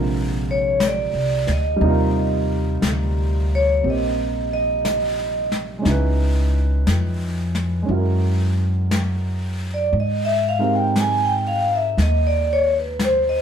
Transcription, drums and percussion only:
0.80 brush sweep, snare, hi-hat pedal
1.47 snare
1.80 brush sweep
2.82 brush sweep, snare, hi-hat pedal
3.83 brush sweep
4.85 brush sweep, snare, hi-hat pedal
5.52 snare
5.85 brush sweep, snare
6.87 brush sweep, snare, hi-hat pedal
7.55 snare
7.89 brush sweep
8.91 brush sweep, snare, hi-hat pedal
9.93 brush sweep
10.96 brush sweep, snare, hi-hat pedal
11.98 brush sweep, snare
12.99 brush sweep, snare, hi-hat pedal

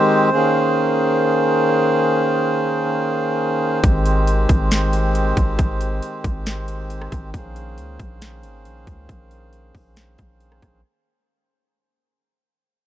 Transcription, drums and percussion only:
3.84 kick, closed hi-hat
4.06 closed hi-hat
4.27 closed hi-hat
4.49 kick, closed hi-hat
4.71 snare, closed hi-hat
4.93 closed hi-hat
5.15 closed hi-hat
5.37 kick, closed hi-hat
5.59 kick, closed hi-hat
5.81 closed hi-hat
6.02 closed hi-hat
6.24 kick, closed hi-hat
6.46 snare, closed hi-hat
6.68 closed hi-hat
6.90 closed hi-hat
7.02 cross-stick
7.12 kick, closed hi-hat
7.34 kick, closed hi-hat
7.56 closed hi-hat
7.78 closed hi-hat
8.00 kick, closed hi-hat
8.22 snare, closed hi-hat
8.43 closed hi-hat
8.65 closed hi-hat
8.87 kick, closed hi-hat
9.09 kick, closed hi-hat
9.31 closed hi-hat
9.53 closed hi-hat
9.75 kick, open hi-hat
9.96 snare, closed hi-hat
10.18 kick, closed hi-hat
10.40 closed hi-hat
10.52 cross-stick
10.62 kick, cross-stick, closed hi-hat

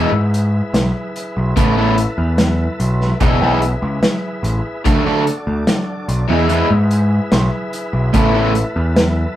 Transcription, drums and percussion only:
0.34 closed hi-hat
0.74 snare, closed hi-hat
1.16 closed hi-hat
1.57 kick, closed hi-hat
1.98 closed hi-hat
2.38 snare, closed hi-hat
2.80 closed hi-hat
3.01 snare
3.20 kick, closed hi-hat
3.62 closed hi-hat
4.03 snare, closed hi-hat
4.44 closed hi-hat
4.85 kick, closed hi-hat
5.27 closed hi-hat
5.67 snare, closed hi-hat
6.09 closed hi-hat
6.49 closed hi-hat
6.91 closed hi-hat
7.32 snare, closed hi-hat
7.73 closed hi-hat
8.14 kick, closed hi-hat
8.55 closed hi-hat
8.96 snare, closed hi-hat

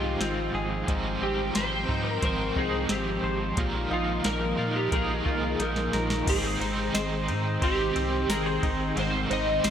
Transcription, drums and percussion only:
0.21 snare, closed hi-hat
0.88 kick, closed hi-hat
1.55 snare, closed hi-hat
1.89 kick
2.22 kick, closed hi-hat
2.56 kick
2.89 snare, closed hi-hat
3.57 kick, closed hi-hat
4.24 snare, closed hi-hat
4.92 kick, closed hi-hat
5.26 kick
5.60 snare, closed hi-hat
5.76 snare
5.93 snare
6.10 snare
6.27 kick, crash, ride
6.61 ride
6.95 snare, ride, tambourine
7.28 ride
7.62 kick, ride
7.96 ride
8.30 snare, ride, tambourine
8.63 kick, ride
8.97 ride
9.31 ride
9.64 snare, ride, tambourine

